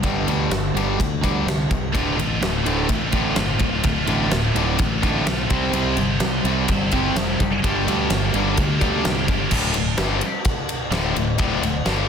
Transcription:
0.03 fingered electric bass G1, distorted electric guitar G2 D3 G3, kick, ride
0.28 fingered electric bass D2, distorted electric guitar G2 D3 G3, ride
0.50 fingered electric bass G1, distorted electric guitar G2 D3, snare, ride
0.75 fingered electric bass G1, distorted electric guitar G2 D3 G3, ride
0.99 fingered electric bass D2, distorted electric guitar G2 D3, kick, ride
1.23 distorted electric guitar G2 D3 G3, kick, ride
1.46 fingered electric bass C2, distorted electric guitar G2 D3, snare, ride
1.71 fingered electric bass C2, distorted electric guitar G2 D3, kick, ride
1.94 fingered electric bass D1, distorted electric guitar D2 A2 D3 A3 F4, kick, ride
2.18 fingered electric bass A1, distorted electric guitar D2 A2, ride
2.42 fingered electric bass D1, distorted electric guitar D2 A2, snare, ride
2.66 fingered electric bass D1, distorted electric guitar D2 A2 D3, ride
2.89 fingered electric bass A1, distorted electric guitar D2 A2, kick, ride
3.11 distorted electric guitar D2 A2 D3 A3 F4, kick, ride
3.36 fingered electric bass G1, distorted electric guitar D2 A2 D3 A3 F4, snare, ride
3.59 fingered electric bass D1, distorted electric guitar D2 A2, kick, ride
3.84 fingered electric bass D1, distorted electric guitar D2 A2 D3 A3 F4, kick, ride
4.07 fingered electric bass A1, distorted electric guitar D2 A2 D3, ride
4.31 fingered electric bass D1, distorted electric guitar D2 A2, snare, ride
4.55 fingered electric bass D1, distorted electric guitar D2 A2 D3, ride
4.79 fingered electric bass A1, distorted electric guitar D2 A2, kick, ride
5.02 distorted electric guitar D2 A2 D3 A3 F4, kick, ride
5.07 distorted electric guitar D2 A2
5.25 fingered electric bass B1, distorted electric guitar D2 A2 D3, snare, ride
5.29 distorted electric guitar A3 F4
5.50 fingered electric bass C2, distorted electric guitar C3 G3 C4 E4 G4, kick, ride
5.55 distorted electric guitar C5
5.72 fingered electric bass C2, distorted electric guitar C3 G3 C4, ride
5.97 fingered electric bass G1, distorted electric guitar C3 G3, ride
6.20 fingered electric bass C2, distorted electric guitar C3 G3, snare, ride
6.44 fingered electric bass C2, distorted electric guitar C3 G3 C4, ride
6.68 fingered electric bass G1, distorted electric guitar C3 G3 C4 E4 G4 C5, kick, ride
6.92 distorted electric guitar C3 G3 C4 E4 G4 C5, kick, ride
7.15 fingered electric bass F1, distorted electric guitar C3 G3, snare, ride
7.40 fingered electric bass F#1, distorted electric guitar C3 G3, kick, ride
7.64 fingered electric bass G1, distorted electric guitar G2 D3 G3 A#3 D4 G4, kick, ride
7.87 fingered electric bass D2, distorted electric guitar G2 D3 G3, ride
8.10 fingered electric bass G1, distorted electric guitar G2 D3, snare, ride
8.34 fingered electric bass G1, distorted electric guitar G2 D3 G3, ride
8.57 fingered electric bass D2, distorted electric guitar G2 D3, kick, ride
8.79 distorted electric guitar G2 D3 G3 A#3 D4 G4, kick, ride
9.04 fingered electric bass C2, distorted electric guitar G2 D3 G3 A#3 D4 G4, snare, ride
9.27 fingered electric bass G1, distorted electric guitar G2 D3, kick, ride
9.51 fingered electric bass D1, distorted electric guitar D2 A2 D3, kick, crash
9.74 fingered electric bass D1, distorted electric guitar D2 A2, ride
9.97 fingered electric bass G1, distorted electric guitar G2 D3 G3, snare, ride
10.21 ride
10.45 kick, ride
10.69 ride
10.91 fingered electric bass D1, distorted electric guitar D2 A2 D3, snare, ride
11.16 fingered electric bass D1, distorted electric guitar D2 A2, ride
11.38 fingered electric bass D1, distorted electric guitar D2 A2 D3, kick, ride
11.62 fingered electric bass D1, distorted electric guitar D2 A2, ride
11.85 fingered electric bass G1, distorted electric guitar G2 D3 G3, snare, ride

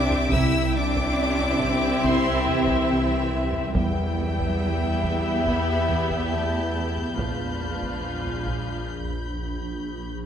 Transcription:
Already playing: double bass section C2, synth drone C2, cello section C3 D4, french horn section C4 E4, viola section C4 E4, violin section G4 E5 G5 D6
0.11 taiko low
0.31 synth drone C2, double bass section C2, cello section C3 E4, viola section C4 E4, french horn section C4 E4, violin section G4 E5 E6, taiko
0.75 cello section C4 D4, violin section D6
0.96 taiko
1.19 cello section C4
1.39 taiko low
1.60 cello section C3, taiko
2.03 cello section C3 C4, violin section C6, taiko
2.46 cello section C3 E3, violin section E5, taiko low
2.68 taiko
2.89 cello section C3
3.32 cello section C3
3.53 taiko low
3.74 synth drone E2, double bass section E2, cello section E2 G3, french horn section B3 E4, viola section B3 E4, violin section G4 E5 G5 G6, taiko
4.18 cello section E3
4.39 taiko
4.60 cello section E3, violin section B5
4.82 taiko low
5.03 cello section E2, taiko
5.45 cello section E2 B3, french horn section B3 E4, violin section B5, taiko
5.89 cello section E2, taiko low
6.11 taiko
6.32 cello section E2 A3, violin section A5
6.75 cello section E2
6.97 taiko low
7.17 double bass section A#1, synth drone A#1, cello section A#2 A3, viola section F3 D4, french horn section D4 F4, violin section F4 F5 A5, taiko
7.60 cello section A#3
7.82 taiko
8.03 cello section G#3 A#3, french horn section D4 F4, violin section G#5
8.25 taiko low
8.46 cello section A#2, taiko

